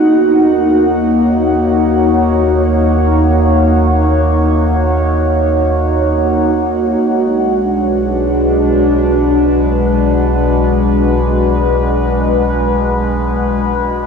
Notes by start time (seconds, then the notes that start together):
Already playing: D#2 A#3 D#4 F#4 D#5 F#5
0.60 C#5
6.98 B1 G#3
7.21 D4
7.65 B4